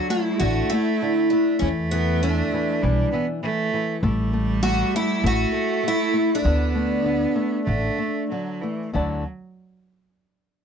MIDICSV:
0, 0, Header, 1, 5, 480
1, 0, Start_track
1, 0, Key_signature, 2, "major"
1, 0, Tempo, 606061
1, 1282, Time_signature, 4, 2, 24, 8
1, 5588, Tempo, 628931
1, 7028, Tempo, 610376
1, 8369, End_track
2, 0, Start_track
2, 0, Title_t, "Twelve-string acoustic guitar"
2, 0, Program_c, 0, 25
2, 81, Note_on_c, 0, 64, 91
2, 313, Note_on_c, 0, 66, 86
2, 328, Note_off_c, 0, 64, 0
2, 552, Note_on_c, 0, 64, 97
2, 566, Note_off_c, 0, 66, 0
2, 1027, Note_off_c, 0, 64, 0
2, 1030, Note_on_c, 0, 62, 78
2, 1258, Note_off_c, 0, 62, 0
2, 1261, Note_on_c, 0, 61, 93
2, 1329, Note_off_c, 0, 61, 0
2, 1515, Note_on_c, 0, 59, 82
2, 1761, Note_off_c, 0, 59, 0
2, 1764, Note_on_c, 0, 62, 79
2, 2683, Note_off_c, 0, 62, 0
2, 3665, Note_on_c, 0, 66, 109
2, 3914, Note_off_c, 0, 66, 0
2, 3927, Note_on_c, 0, 64, 101
2, 4163, Note_off_c, 0, 64, 0
2, 4170, Note_on_c, 0, 66, 105
2, 4650, Note_off_c, 0, 66, 0
2, 4656, Note_on_c, 0, 64, 99
2, 4978, Note_off_c, 0, 64, 0
2, 5028, Note_on_c, 0, 62, 82
2, 6532, Note_off_c, 0, 62, 0
2, 8369, End_track
3, 0, Start_track
3, 0, Title_t, "Cello"
3, 0, Program_c, 1, 42
3, 0, Note_on_c, 1, 54, 92
3, 316, Note_on_c, 1, 57, 101
3, 328, Note_off_c, 1, 54, 0
3, 1272, Note_off_c, 1, 57, 0
3, 1277, Note_on_c, 1, 57, 100
3, 2234, Note_on_c, 1, 55, 102
3, 2246, Note_off_c, 1, 57, 0
3, 2463, Note_off_c, 1, 55, 0
3, 2468, Note_on_c, 1, 59, 101
3, 2577, Note_off_c, 1, 59, 0
3, 2711, Note_on_c, 1, 57, 108
3, 3152, Note_off_c, 1, 57, 0
3, 3200, Note_on_c, 1, 55, 108
3, 4151, Note_on_c, 1, 57, 113
3, 4163, Note_off_c, 1, 55, 0
3, 5098, Note_off_c, 1, 57, 0
3, 5103, Note_on_c, 1, 59, 102
3, 6024, Note_off_c, 1, 59, 0
3, 6041, Note_on_c, 1, 57, 93
3, 6504, Note_off_c, 1, 57, 0
3, 6532, Note_on_c, 1, 54, 77
3, 6772, Note_on_c, 1, 52, 68
3, 6783, Note_off_c, 1, 54, 0
3, 7020, Note_off_c, 1, 52, 0
3, 7031, Note_on_c, 1, 54, 66
3, 7256, Note_off_c, 1, 54, 0
3, 8369, End_track
4, 0, Start_track
4, 0, Title_t, "Nylon-string guitar"
4, 0, Program_c, 2, 24
4, 76, Note_on_c, 2, 57, 54
4, 311, Note_off_c, 2, 57, 0
4, 329, Note_on_c, 2, 50, 57
4, 559, Note_off_c, 2, 50, 0
4, 576, Note_on_c, 2, 57, 56
4, 802, Note_off_c, 2, 57, 0
4, 810, Note_on_c, 2, 50, 55
4, 1038, Note_off_c, 2, 50, 0
4, 1050, Note_on_c, 2, 57, 52
4, 1280, Note_off_c, 2, 57, 0
4, 1287, Note_on_c, 2, 52, 64
4, 1518, Note_off_c, 2, 52, 0
4, 1527, Note_on_c, 2, 52, 53
4, 1759, Note_off_c, 2, 52, 0
4, 1773, Note_on_c, 2, 52, 57
4, 2000, Note_off_c, 2, 52, 0
4, 2009, Note_on_c, 2, 52, 56
4, 2237, Note_off_c, 2, 52, 0
4, 2245, Note_on_c, 2, 52, 61
4, 2473, Note_off_c, 2, 52, 0
4, 2484, Note_on_c, 2, 52, 57
4, 2710, Note_off_c, 2, 52, 0
4, 2719, Note_on_c, 2, 52, 60
4, 2945, Note_off_c, 2, 52, 0
4, 2959, Note_on_c, 2, 52, 56
4, 3183, Note_off_c, 2, 52, 0
4, 3195, Note_on_c, 2, 57, 72
4, 3422, Note_off_c, 2, 57, 0
4, 3432, Note_on_c, 2, 57, 57
4, 3656, Note_off_c, 2, 57, 0
4, 3665, Note_on_c, 2, 57, 61
4, 3900, Note_off_c, 2, 57, 0
4, 3914, Note_on_c, 2, 57, 60
4, 4138, Note_off_c, 2, 57, 0
4, 4147, Note_on_c, 2, 57, 76
4, 4380, Note_off_c, 2, 57, 0
4, 4389, Note_on_c, 2, 57, 61
4, 4611, Note_off_c, 2, 57, 0
4, 4620, Note_on_c, 2, 57, 60
4, 4851, Note_off_c, 2, 57, 0
4, 4860, Note_on_c, 2, 57, 54
4, 5098, Note_off_c, 2, 57, 0
4, 5105, Note_on_c, 2, 50, 67
4, 5347, Note_on_c, 2, 57, 54
4, 5575, Note_off_c, 2, 50, 0
4, 5580, Note_off_c, 2, 57, 0
4, 5584, Note_on_c, 2, 50, 55
4, 5811, Note_off_c, 2, 50, 0
4, 5817, Note_on_c, 2, 57, 54
4, 6048, Note_off_c, 2, 57, 0
4, 6054, Note_on_c, 2, 50, 55
4, 6288, Note_off_c, 2, 50, 0
4, 6296, Note_on_c, 2, 57, 53
4, 6534, Note_off_c, 2, 57, 0
4, 6550, Note_on_c, 2, 50, 53
4, 6784, Note_off_c, 2, 50, 0
4, 6790, Note_on_c, 2, 57, 46
4, 7016, Note_off_c, 2, 57, 0
4, 7022, Note_on_c, 2, 50, 55
4, 7025, Note_on_c, 2, 57, 45
4, 7029, Note_on_c, 2, 64, 47
4, 7029, Note_on_c, 2, 74, 47
4, 7036, Note_on_c, 2, 78, 51
4, 7039, Note_on_c, 2, 81, 56
4, 7251, Note_off_c, 2, 50, 0
4, 7253, Note_off_c, 2, 57, 0
4, 7255, Note_off_c, 2, 64, 0
4, 7255, Note_off_c, 2, 74, 0
4, 7259, Note_off_c, 2, 78, 0
4, 7260, Note_off_c, 2, 81, 0
4, 8369, End_track
5, 0, Start_track
5, 0, Title_t, "Upright bass"
5, 0, Program_c, 3, 32
5, 320, Note_on_c, 3, 33, 89
5, 477, Note_off_c, 3, 33, 0
5, 1281, Note_on_c, 3, 40, 94
5, 1904, Note_off_c, 3, 40, 0
5, 2243, Note_on_c, 3, 35, 89
5, 2397, Note_off_c, 3, 35, 0
5, 3190, Note_on_c, 3, 33, 100
5, 3813, Note_off_c, 3, 33, 0
5, 4148, Note_on_c, 3, 33, 96
5, 4302, Note_off_c, 3, 33, 0
5, 5108, Note_on_c, 3, 38, 98
5, 5730, Note_off_c, 3, 38, 0
5, 6060, Note_on_c, 3, 33, 86
5, 6215, Note_off_c, 3, 33, 0
5, 7033, Note_on_c, 3, 38, 86
5, 7257, Note_off_c, 3, 38, 0
5, 8369, End_track
0, 0, End_of_file